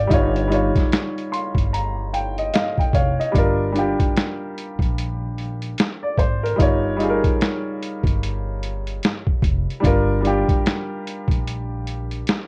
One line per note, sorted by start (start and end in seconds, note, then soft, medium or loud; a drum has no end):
0.00 0.33 D5 medium
0.00 0.12 F5 medium
0.00 0.12 G5 medium
0.07 0.69 G1 loud
0.07 0.39 G3 medium
0.07 0.40 D#4 medium
0.07 kick loud
0.07 closed hi-hat medium
0.11 0.41 F4 medium
0.11 0.42 C#5 medium
0.36 closed hi-hat soft
0.48 1.62 G3 medium
0.48 1.63 D#4 medium
0.52 1.64 F4 medium
0.52 1.65 C#5 medium
0.52 closed hi-hat medium
0.75 kick loud
0.75 snare soft
0.75 closed hi-hat soft
0.92 snare loud
0.92 closed hi-hat medium
1.18 closed hi-hat soft
1.32 1.70 C6 medium
1.32 closed hi-hat medium
1.55 2.49 G1 medium
1.55 kick medium
1.55 closed hi-hat soft
1.73 2.10 A#5 medium
1.73 closed hi-hat medium
2.13 2.51 G5 medium
2.13 closed hi-hat medium
2.38 2.52 D#5 medium
2.38 closed hi-hat soft
2.54 2.91 D#5 medium
2.54 2.77 F5 medium
2.54 snare medium
2.54 closed hi-hat medium
2.78 2.94 G5 medium
2.78 kick medium
2.78 closed hi-hat soft
2.93 3.16 F1 medium
2.93 3.32 C#5 medium
2.93 3.18 F5 medium
2.93 kick loud
2.93 closed hi-hat medium
3.19 3.58 D#5 medium
3.19 closed hi-hat soft
3.32 3.93 G1 medium
3.32 3.64 G3 medium
3.32 3.65 D4 medium
3.32 kick loud
3.32 closed hi-hat medium
3.36 3.66 F4 medium
3.36 3.67 A#4 medium
3.72 4.86 G3 medium
3.72 4.87 D4 medium
3.72 closed hi-hat medium
3.76 4.88 F4 medium
3.76 4.89 G4 medium
4.00 kick medium
4.00 closed hi-hat soft
4.17 snare loud
4.17 closed hi-hat medium
4.58 closed hi-hat medium
4.79 5.73 A#1 medium
4.79 kick medium
4.79 closed hi-hat soft
4.98 closed hi-hat medium
5.38 closed hi-hat medium
5.62 closed hi-hat soft
5.78 snare loud
5.78 closed hi-hat medium
6.03 6.18 D5 medium
6.18 6.54 G#1 medium
6.18 6.42 C5 medium
6.18 kick loud
6.18 closed hi-hat medium
6.43 6.82 A#4 medium
6.43 closed hi-hat soft
6.56 7.18 G1 medium
6.56 6.88 G3 medium
6.56 6.89 D#4 medium
6.56 kick loud
6.56 closed hi-hat medium
6.60 6.90 F4 medium
6.60 6.91 C#5 medium
6.97 8.10 G3 medium
6.97 8.11 D#4 medium
6.97 closed hi-hat medium
7.01 8.13 F4 medium
7.01 7.09 G#4 medium
7.10 8.17 A#4 medium
7.24 kick loud
7.24 closed hi-hat soft
7.41 snare loud
7.41 closed hi-hat medium
7.83 closed hi-hat medium
8.04 8.97 G1 medium
8.04 kick medium
8.04 closed hi-hat soft
8.23 closed hi-hat medium
8.63 closed hi-hat medium
8.87 closed hi-hat soft
9.03 snare loud
9.03 closed hi-hat medium
9.27 kick medium
9.42 9.65 F1 medium
9.42 kick loud
9.42 closed hi-hat medium
9.70 closed hi-hat soft
9.80 10.12 G3 medium
9.80 10.13 D4 medium
9.80 kick loud
9.84 10.42 G1 loud
9.84 10.14 F4 medium
9.84 10.15 A#4 loud
9.84 closed hi-hat medium
10.21 11.35 G3 medium
10.21 11.36 D4 medium
10.25 11.37 F4 medium
10.25 11.38 G4 medium
10.25 closed hi-hat medium
10.49 kick loud
10.49 closed hi-hat soft
10.66 snare loud
10.66 closed hi-hat medium
11.07 closed hi-hat medium
11.28 12.22 A#1 medium
11.28 kick medium
11.28 closed hi-hat soft
11.48 closed hi-hat medium
11.87 closed hi-hat medium
12.11 closed hi-hat soft
12.27 snare loud
12.27 closed hi-hat medium